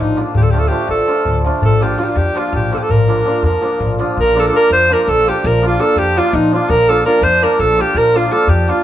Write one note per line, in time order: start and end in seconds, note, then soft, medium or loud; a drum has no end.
0.00 0.21 A#1 medium
0.00 0.15 F3 medium
0.00 0.19 D#4 medium
0.16 0.40 F3 medium
0.16 0.31 A#3 medium
0.16 0.32 D4 medium
0.16 0.32 F4 medium
0.16 darbuka tek medium
0.35 0.68 D2 medium
0.35 0.44 G4 medium
0.35 darbuka dum loud
0.43 0.52 A4 medium
0.43 darbuka tek soft
0.51 0.69 F3 medium
0.51 0.68 A3 medium
0.51 0.68 D4 medium
0.51 0.68 F4 medium
0.51 0.61 G4 medium
0.51 darbuka tek medium
0.59 0.70 A4 medium
0.59 darbuka tek soft
0.68 1.06 F3 medium
0.68 0.85 A3 medium
0.68 0.85 D4 medium
0.68 0.85 F4 medium
0.68 0.90 G4 loud
0.68 darbuka tek medium
0.88 1.00 A1 medium
0.88 1.42 A4 medium
0.88 darbuka tek medium
1.07 1.44 F3 medium
1.07 1.22 A3 medium
1.07 1.23 D4 medium
1.07 1.23 F4 medium
1.07 darbuka tek medium
1.25 1.48 D2 medium
1.25 darbuka tek medium
1.25 darbuka dum medium
1.45 1.68 F3 medium
1.45 1.60 A3 medium
1.45 1.60 D4 medium
1.45 1.60 F4 medium
1.45 darbuka tek medium
1.62 1.95 A#1 medium
1.62 1.84 A4 medium
1.62 darbuka dum loud
1.72 darbuka tek soft
1.80 1.97 F3 medium
1.80 1.95 A#3 medium
1.80 1.95 D4 medium
1.80 1.96 F4 medium
1.80 2.01 G4 medium
1.80 darbuka tek medium
1.98 2.33 F3 medium
1.98 2.12 A#3 medium
1.98 2.12 D4 medium
1.98 2.05 F4 medium
1.98 2.13 F4 medium
1.98 darbuka tek medium
2.04 2.10 G4 medium
2.09 2.19 F4 medium
2.16 2.28 F2 medium
2.16 2.39 G4 medium
2.16 darbuka tek medium
2.34 2.70 F3 medium
2.34 2.49 A#3 medium
2.34 2.50 D4 medium
2.34 2.50 F4 medium
2.34 2.54 F4 medium
2.34 darbuka tek medium
2.53 2.75 A#1 medium
2.53 2.72 G4 medium
2.53 darbuka tek medium
2.53 darbuka dum medium
2.71 2.96 F3 medium
2.71 2.86 A#3 medium
2.71 2.87 D4 medium
2.71 2.87 F4 medium
2.71 2.80 A4 medium
2.71 darbuka tek medium
2.78 2.85 G4 medium
2.83 2.92 A4 medium
2.89 3.22 A#1 medium
2.89 3.44 A#4 loud
2.89 darbuka dum loud
3.00 darbuka tek soft
3.08 3.24 F3 medium
3.08 3.23 A#3 medium
3.08 3.23 D4 medium
3.08 3.23 F4 medium
3.08 darbuka tek medium
3.18 darbuka tek soft
3.25 3.60 F3 medium
3.25 3.39 A#3 medium
3.25 3.40 D4 medium
3.25 3.40 F4 medium
3.25 darbuka tek medium
3.35 darbuka tek soft
3.43 3.55 F2 medium
3.43 3.97 A#4 medium
3.43 darbuka tek medium
3.53 darbuka tek soft
3.61 3.97 F3 medium
3.61 3.76 A#3 medium
3.61 3.76 D4 medium
3.61 3.77 F4 medium
3.61 darbuka tek medium
3.72 darbuka tek soft
3.80 4.02 A#1 medium
3.80 darbuka tek medium
3.80 darbuka dum medium
3.90 darbuka tek soft
3.98 4.23 F3 medium
3.98 4.14 A#3 medium
3.98 4.14 D4 medium
3.98 4.14 F4 medium
3.98 darbuka tek medium
4.08 darbuka tek soft
4.17 4.49 A#1 medium
4.17 4.41 A#4 loud
4.35 4.51 F3 medium
4.35 4.49 A#3 medium
4.35 4.50 D4 medium
4.35 4.50 F4 medium
4.39 4.42 A4 loud
4.39 4.50 A#4 medium
4.48 4.87 F3 medium
4.48 4.55 A4 medium
4.53 4.66 A#3 medium
4.53 4.67 D4 medium
4.53 4.67 F4 medium
4.53 4.70 A#4 loud
4.70 4.92 F2 medium
4.70 4.94 C5 loud
4.89 5.25 F3 medium
4.89 5.04 A#3 medium
4.89 5.04 D4 medium
4.89 5.04 F4 medium
4.89 5.03 A#4 loud
5.03 5.11 A#4 medium
5.08 5.30 A#1 loud
5.08 5.30 A4 loud
5.26 5.60 F3 medium
5.26 5.41 A#3 medium
5.26 5.41 D4 medium
5.26 5.41 F4 medium
5.26 5.48 G4 loud
5.44 5.76 A#1 loud
5.44 5.64 A#4 loud
5.61 5.78 F3 medium
5.61 5.76 A#3 medium
5.61 5.76 D4 medium
5.61 5.77 F4 medium
5.67 5.82 F4 loud
5.79 6.14 F3 medium
5.79 5.93 A#3 medium
5.79 5.93 D4 medium
5.79 5.94 F4 medium
5.79 6.00 A4 loud
5.96 6.18 F2 medium
5.96 6.19 G4 loud
6.15 6.50 F3 medium
6.15 6.30 A#3 medium
6.15 6.30 D4 medium
6.15 6.31 F4 medium
6.15 6.36 F4 loud
6.33 6.55 A#1 loud
6.33 6.53 D#4 loud
6.52 6.87 F3 medium
6.52 6.66 A#3 medium
6.52 6.67 D4 medium
6.52 6.67 F4 medium
6.52 6.71 F4 loud
6.70 7.01 A#1 loud
6.70 6.90 A#4 loud
6.88 7.03 F3 medium
6.88 7.02 A#3 medium
6.88 7.02 D4 medium
6.88 7.03 F4 medium
6.88 7.05 A4 loud
7.05 7.40 F3 medium
7.05 7.19 A#3 medium
7.05 7.19 D4 medium
7.05 7.19 F4 medium
7.05 7.25 A#4 loud
7.21 7.44 F2 loud
7.21 7.45 C5 loud
7.41 7.76 F3 medium
7.41 7.56 A#3 medium
7.41 7.56 D4 medium
7.41 7.56 F4 medium
7.41 7.61 A#4 loud
7.59 7.81 A#1 loud
7.59 7.83 A4 loud
7.77 8.13 F3 medium
7.77 7.92 A#3 medium
7.77 7.92 D4 medium
7.77 7.93 F4 medium
7.81 7.99 G4 loud
7.95 8.26 A#1 medium
7.95 8.18 A#4 loud
8.14 8.30 F3 medium
8.14 8.28 A#3 medium
8.14 8.28 D4 medium
8.14 8.28 F4 medium
8.14 8.34 F4 loud
8.31 8.66 F3 medium
8.31 8.45 A#3 medium
8.31 8.45 D4 medium
8.31 8.45 F4 medium
8.31 8.51 A4 loud
8.47 8.69 F2 medium
8.47 8.71 G4 loud
8.67 8.84 F3 medium
8.67 8.81 A#3 medium
8.67 8.82 D4 medium
8.67 8.82 F4 medium
8.67 8.84 F4 medium